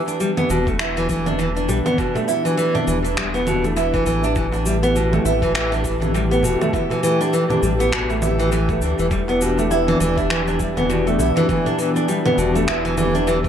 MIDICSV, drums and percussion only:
0, 0, Header, 1, 3, 480
1, 0, Start_track
1, 0, Key_signature, 1, "minor"
1, 0, Tempo, 594059
1, 1603, Time_signature, 4, 2, 24, 8
1, 10898, End_track
2, 0, Start_track
2, 0, Title_t, "Darbuka"
2, 63, Note_on_c, 9, 62, 46
2, 144, Note_off_c, 9, 62, 0
2, 1364, Note_on_c, 9, 62, 29
2, 1365, Note_on_c, 9, 64, 76
2, 1445, Note_off_c, 9, 62, 0
2, 1446, Note_off_c, 9, 64, 0
2, 1501, Note_on_c, 9, 63, 63
2, 1582, Note_off_c, 9, 63, 0
2, 1738, Note_on_c, 9, 64, 74
2, 1743, Note_on_c, 9, 63, 68
2, 1819, Note_off_c, 9, 64, 0
2, 1824, Note_off_c, 9, 63, 0
2, 1987, Note_on_c, 9, 62, 47
2, 2068, Note_off_c, 9, 62, 0
2, 2223, Note_on_c, 9, 64, 80
2, 2304, Note_off_c, 9, 64, 0
2, 2700, Note_on_c, 9, 62, 39
2, 2780, Note_off_c, 9, 62, 0
2, 2809, Note_on_c, 9, 63, 59
2, 2889, Note_off_c, 9, 63, 0
2, 2946, Note_on_c, 9, 62, 49
2, 3027, Note_off_c, 9, 62, 0
2, 3182, Note_on_c, 9, 62, 64
2, 3263, Note_off_c, 9, 62, 0
2, 3656, Note_on_c, 9, 63, 65
2, 3737, Note_off_c, 9, 63, 0
2, 3900, Note_on_c, 9, 62, 49
2, 3981, Note_off_c, 9, 62, 0
2, 5194, Note_on_c, 9, 64, 88
2, 5201, Note_on_c, 9, 62, 34
2, 5274, Note_off_c, 9, 64, 0
2, 5282, Note_off_c, 9, 62, 0
2, 5345, Note_on_c, 9, 63, 61
2, 5426, Note_off_c, 9, 63, 0
2, 5578, Note_on_c, 9, 64, 75
2, 5584, Note_on_c, 9, 63, 61
2, 5659, Note_off_c, 9, 64, 0
2, 5665, Note_off_c, 9, 63, 0
2, 5825, Note_on_c, 9, 62, 47
2, 5906, Note_off_c, 9, 62, 0
2, 6058, Note_on_c, 9, 64, 90
2, 6138, Note_off_c, 9, 64, 0
2, 6548, Note_on_c, 9, 62, 30
2, 6629, Note_off_c, 9, 62, 0
2, 6646, Note_on_c, 9, 63, 62
2, 6727, Note_off_c, 9, 63, 0
2, 6777, Note_on_c, 9, 62, 44
2, 6858, Note_off_c, 9, 62, 0
2, 7021, Note_on_c, 9, 62, 56
2, 7102, Note_off_c, 9, 62, 0
2, 7499, Note_on_c, 9, 63, 62
2, 7580, Note_off_c, 9, 63, 0
2, 7738, Note_on_c, 9, 62, 49
2, 7819, Note_off_c, 9, 62, 0
2, 9040, Note_on_c, 9, 64, 81
2, 9042, Note_on_c, 9, 62, 29
2, 9121, Note_off_c, 9, 64, 0
2, 9123, Note_off_c, 9, 62, 0
2, 9178, Note_on_c, 9, 63, 60
2, 9259, Note_off_c, 9, 63, 0
2, 9421, Note_on_c, 9, 64, 78
2, 9426, Note_on_c, 9, 63, 55
2, 9502, Note_off_c, 9, 64, 0
2, 9507, Note_off_c, 9, 63, 0
2, 9668, Note_on_c, 9, 62, 47
2, 9749, Note_off_c, 9, 62, 0
2, 9905, Note_on_c, 9, 64, 85
2, 9986, Note_off_c, 9, 64, 0
2, 10386, Note_on_c, 9, 62, 35
2, 10466, Note_off_c, 9, 62, 0
2, 10486, Note_on_c, 9, 63, 62
2, 10566, Note_off_c, 9, 63, 0
2, 10620, Note_on_c, 9, 62, 46
2, 10701, Note_off_c, 9, 62, 0
2, 10868, Note_on_c, 9, 62, 57
2, 10898, Note_off_c, 9, 62, 0
2, 10898, End_track
3, 0, Start_track
3, 0, Title_t, "Drums"
3, 66, Note_on_c, 9, 82, 30
3, 147, Note_off_c, 9, 82, 0
3, 165, Note_on_c, 9, 82, 40
3, 246, Note_off_c, 9, 82, 0
3, 302, Note_on_c, 9, 64, 74
3, 305, Note_on_c, 9, 82, 21
3, 383, Note_off_c, 9, 64, 0
3, 386, Note_off_c, 9, 82, 0
3, 405, Note_on_c, 9, 82, 72
3, 486, Note_off_c, 9, 82, 0
3, 541, Note_on_c, 9, 36, 101
3, 545, Note_on_c, 9, 82, 28
3, 622, Note_off_c, 9, 36, 0
3, 625, Note_off_c, 9, 82, 0
3, 641, Note_on_c, 9, 26, 78
3, 644, Note_on_c, 9, 82, 43
3, 722, Note_off_c, 9, 26, 0
3, 725, Note_off_c, 9, 82, 0
3, 785, Note_on_c, 9, 82, 21
3, 866, Note_off_c, 9, 82, 0
3, 881, Note_on_c, 9, 36, 59
3, 885, Note_on_c, 9, 82, 75
3, 962, Note_off_c, 9, 36, 0
3, 966, Note_off_c, 9, 82, 0
3, 1021, Note_on_c, 9, 64, 76
3, 1024, Note_on_c, 9, 82, 32
3, 1102, Note_off_c, 9, 64, 0
3, 1105, Note_off_c, 9, 82, 0
3, 1123, Note_on_c, 9, 82, 44
3, 1204, Note_off_c, 9, 82, 0
3, 1265, Note_on_c, 9, 82, 21
3, 1346, Note_off_c, 9, 82, 0
3, 1366, Note_on_c, 9, 82, 70
3, 1447, Note_off_c, 9, 82, 0
3, 1504, Note_on_c, 9, 64, 69
3, 1507, Note_on_c, 9, 82, 30
3, 1585, Note_off_c, 9, 64, 0
3, 1587, Note_off_c, 9, 82, 0
3, 1602, Note_on_c, 9, 36, 120
3, 1607, Note_on_c, 9, 82, 44
3, 1682, Note_off_c, 9, 36, 0
3, 1688, Note_off_c, 9, 82, 0
3, 1747, Note_on_c, 9, 82, 21
3, 1827, Note_off_c, 9, 82, 0
3, 1846, Note_on_c, 9, 82, 73
3, 1927, Note_off_c, 9, 82, 0
3, 1987, Note_on_c, 9, 82, 33
3, 2068, Note_off_c, 9, 82, 0
3, 2088, Note_on_c, 9, 82, 40
3, 2168, Note_off_c, 9, 82, 0
3, 2224, Note_on_c, 9, 64, 76
3, 2226, Note_on_c, 9, 82, 22
3, 2305, Note_off_c, 9, 64, 0
3, 2307, Note_off_c, 9, 82, 0
3, 2325, Note_on_c, 9, 82, 77
3, 2406, Note_off_c, 9, 82, 0
3, 2466, Note_on_c, 9, 82, 33
3, 2547, Note_off_c, 9, 82, 0
3, 2562, Note_on_c, 9, 36, 61
3, 2563, Note_on_c, 9, 26, 81
3, 2565, Note_on_c, 9, 82, 42
3, 2643, Note_off_c, 9, 26, 0
3, 2643, Note_off_c, 9, 36, 0
3, 2646, Note_off_c, 9, 82, 0
3, 2704, Note_on_c, 9, 82, 23
3, 2785, Note_off_c, 9, 82, 0
3, 2802, Note_on_c, 9, 64, 78
3, 2805, Note_on_c, 9, 82, 81
3, 2883, Note_off_c, 9, 64, 0
3, 2886, Note_off_c, 9, 82, 0
3, 2945, Note_on_c, 9, 82, 32
3, 3026, Note_off_c, 9, 82, 0
3, 3044, Note_on_c, 9, 82, 47
3, 3125, Note_off_c, 9, 82, 0
3, 3182, Note_on_c, 9, 36, 107
3, 3184, Note_on_c, 9, 82, 21
3, 3262, Note_off_c, 9, 36, 0
3, 3264, Note_off_c, 9, 82, 0
3, 3282, Note_on_c, 9, 82, 74
3, 3363, Note_off_c, 9, 82, 0
3, 3423, Note_on_c, 9, 82, 30
3, 3504, Note_off_c, 9, 82, 0
3, 3522, Note_on_c, 9, 36, 117
3, 3523, Note_on_c, 9, 82, 46
3, 3603, Note_off_c, 9, 36, 0
3, 3604, Note_off_c, 9, 82, 0
3, 3665, Note_on_c, 9, 82, 23
3, 3745, Note_off_c, 9, 82, 0
3, 3765, Note_on_c, 9, 82, 75
3, 3846, Note_off_c, 9, 82, 0
3, 3907, Note_on_c, 9, 82, 30
3, 3987, Note_off_c, 9, 82, 0
3, 4006, Note_on_c, 9, 82, 45
3, 4087, Note_off_c, 9, 82, 0
3, 4145, Note_on_c, 9, 64, 69
3, 4148, Note_on_c, 9, 82, 22
3, 4226, Note_off_c, 9, 64, 0
3, 4229, Note_off_c, 9, 82, 0
3, 4248, Note_on_c, 9, 82, 79
3, 4329, Note_off_c, 9, 82, 0
3, 4381, Note_on_c, 9, 36, 109
3, 4388, Note_on_c, 9, 82, 32
3, 4462, Note_off_c, 9, 36, 0
3, 4468, Note_off_c, 9, 82, 0
3, 4485, Note_on_c, 9, 26, 75
3, 4488, Note_on_c, 9, 82, 46
3, 4566, Note_off_c, 9, 26, 0
3, 4569, Note_off_c, 9, 82, 0
3, 4629, Note_on_c, 9, 82, 22
3, 4710, Note_off_c, 9, 82, 0
3, 4721, Note_on_c, 9, 36, 63
3, 4726, Note_on_c, 9, 82, 81
3, 4802, Note_off_c, 9, 36, 0
3, 4807, Note_off_c, 9, 82, 0
3, 4866, Note_on_c, 9, 64, 73
3, 4869, Note_on_c, 9, 82, 32
3, 4947, Note_off_c, 9, 64, 0
3, 4950, Note_off_c, 9, 82, 0
3, 4968, Note_on_c, 9, 82, 44
3, 5049, Note_off_c, 9, 82, 0
3, 5108, Note_on_c, 9, 82, 22
3, 5189, Note_off_c, 9, 82, 0
3, 5209, Note_on_c, 9, 82, 73
3, 5289, Note_off_c, 9, 82, 0
3, 5345, Note_on_c, 9, 64, 70
3, 5348, Note_on_c, 9, 82, 29
3, 5426, Note_off_c, 9, 64, 0
3, 5429, Note_off_c, 9, 82, 0
3, 5440, Note_on_c, 9, 36, 106
3, 5448, Note_on_c, 9, 82, 44
3, 5521, Note_off_c, 9, 36, 0
3, 5529, Note_off_c, 9, 82, 0
3, 5588, Note_on_c, 9, 82, 21
3, 5669, Note_off_c, 9, 82, 0
3, 5687, Note_on_c, 9, 82, 72
3, 5768, Note_off_c, 9, 82, 0
3, 5827, Note_on_c, 9, 82, 30
3, 5908, Note_off_c, 9, 82, 0
3, 5926, Note_on_c, 9, 82, 45
3, 6007, Note_off_c, 9, 82, 0
3, 6064, Note_on_c, 9, 64, 67
3, 6067, Note_on_c, 9, 82, 21
3, 6145, Note_off_c, 9, 64, 0
3, 6147, Note_off_c, 9, 82, 0
3, 6164, Note_on_c, 9, 82, 75
3, 6245, Note_off_c, 9, 82, 0
3, 6306, Note_on_c, 9, 82, 32
3, 6386, Note_off_c, 9, 82, 0
3, 6401, Note_on_c, 9, 36, 61
3, 6403, Note_on_c, 9, 26, 77
3, 6406, Note_on_c, 9, 82, 42
3, 6481, Note_off_c, 9, 36, 0
3, 6484, Note_off_c, 9, 26, 0
3, 6487, Note_off_c, 9, 82, 0
3, 6544, Note_on_c, 9, 82, 21
3, 6625, Note_off_c, 9, 82, 0
3, 6643, Note_on_c, 9, 64, 77
3, 6645, Note_on_c, 9, 82, 78
3, 6723, Note_off_c, 9, 64, 0
3, 6726, Note_off_c, 9, 82, 0
3, 6784, Note_on_c, 9, 82, 33
3, 6865, Note_off_c, 9, 82, 0
3, 6883, Note_on_c, 9, 82, 44
3, 6964, Note_off_c, 9, 82, 0
3, 7020, Note_on_c, 9, 36, 111
3, 7024, Note_on_c, 9, 82, 21
3, 7101, Note_off_c, 9, 36, 0
3, 7105, Note_off_c, 9, 82, 0
3, 7124, Note_on_c, 9, 82, 75
3, 7204, Note_off_c, 9, 82, 0
3, 7264, Note_on_c, 9, 82, 30
3, 7344, Note_off_c, 9, 82, 0
3, 7361, Note_on_c, 9, 36, 114
3, 7364, Note_on_c, 9, 82, 41
3, 7442, Note_off_c, 9, 36, 0
3, 7445, Note_off_c, 9, 82, 0
3, 7506, Note_on_c, 9, 82, 22
3, 7587, Note_off_c, 9, 82, 0
3, 7607, Note_on_c, 9, 82, 74
3, 7687, Note_off_c, 9, 82, 0
3, 7747, Note_on_c, 9, 82, 32
3, 7828, Note_off_c, 9, 82, 0
3, 7846, Note_on_c, 9, 82, 42
3, 7927, Note_off_c, 9, 82, 0
3, 7986, Note_on_c, 9, 64, 72
3, 7988, Note_on_c, 9, 82, 21
3, 8066, Note_off_c, 9, 64, 0
3, 8069, Note_off_c, 9, 82, 0
3, 8087, Note_on_c, 9, 82, 73
3, 8168, Note_off_c, 9, 82, 0
3, 8221, Note_on_c, 9, 36, 94
3, 8226, Note_on_c, 9, 82, 31
3, 8302, Note_off_c, 9, 36, 0
3, 8307, Note_off_c, 9, 82, 0
3, 8325, Note_on_c, 9, 26, 73
3, 8327, Note_on_c, 9, 82, 43
3, 8405, Note_off_c, 9, 26, 0
3, 8408, Note_off_c, 9, 82, 0
3, 8465, Note_on_c, 9, 82, 22
3, 8546, Note_off_c, 9, 82, 0
3, 8562, Note_on_c, 9, 36, 63
3, 8565, Note_on_c, 9, 82, 77
3, 8643, Note_off_c, 9, 36, 0
3, 8645, Note_off_c, 9, 82, 0
3, 8704, Note_on_c, 9, 64, 75
3, 8706, Note_on_c, 9, 82, 30
3, 8784, Note_off_c, 9, 64, 0
3, 8787, Note_off_c, 9, 82, 0
3, 8808, Note_on_c, 9, 82, 46
3, 8889, Note_off_c, 9, 82, 0
3, 8948, Note_on_c, 9, 82, 20
3, 9029, Note_off_c, 9, 82, 0
3, 9048, Note_on_c, 9, 82, 74
3, 9129, Note_off_c, 9, 82, 0
3, 9185, Note_on_c, 9, 64, 65
3, 9188, Note_on_c, 9, 82, 31
3, 9266, Note_off_c, 9, 64, 0
3, 9269, Note_off_c, 9, 82, 0
3, 9283, Note_on_c, 9, 36, 110
3, 9289, Note_on_c, 9, 82, 43
3, 9364, Note_off_c, 9, 36, 0
3, 9370, Note_off_c, 9, 82, 0
3, 9427, Note_on_c, 9, 82, 20
3, 9508, Note_off_c, 9, 82, 0
3, 9527, Note_on_c, 9, 82, 71
3, 9608, Note_off_c, 9, 82, 0
3, 9666, Note_on_c, 9, 82, 30
3, 9747, Note_off_c, 9, 82, 0
3, 9766, Note_on_c, 9, 82, 40
3, 9847, Note_off_c, 9, 82, 0
3, 9903, Note_on_c, 9, 64, 73
3, 9905, Note_on_c, 9, 82, 19
3, 9983, Note_off_c, 9, 64, 0
3, 9986, Note_off_c, 9, 82, 0
3, 10007, Note_on_c, 9, 82, 71
3, 10088, Note_off_c, 9, 82, 0
3, 10147, Note_on_c, 9, 82, 31
3, 10228, Note_off_c, 9, 82, 0
3, 10243, Note_on_c, 9, 36, 57
3, 10244, Note_on_c, 9, 26, 78
3, 10247, Note_on_c, 9, 82, 44
3, 10324, Note_off_c, 9, 36, 0
3, 10325, Note_off_c, 9, 26, 0
3, 10328, Note_off_c, 9, 82, 0
3, 10387, Note_on_c, 9, 82, 21
3, 10468, Note_off_c, 9, 82, 0
3, 10485, Note_on_c, 9, 64, 76
3, 10487, Note_on_c, 9, 82, 79
3, 10566, Note_off_c, 9, 64, 0
3, 10568, Note_off_c, 9, 82, 0
3, 10626, Note_on_c, 9, 82, 33
3, 10707, Note_off_c, 9, 82, 0
3, 10727, Note_on_c, 9, 82, 45
3, 10807, Note_off_c, 9, 82, 0
3, 10863, Note_on_c, 9, 36, 97
3, 10868, Note_on_c, 9, 82, 21
3, 10898, Note_off_c, 9, 36, 0
3, 10898, Note_off_c, 9, 82, 0
3, 10898, End_track
0, 0, End_of_file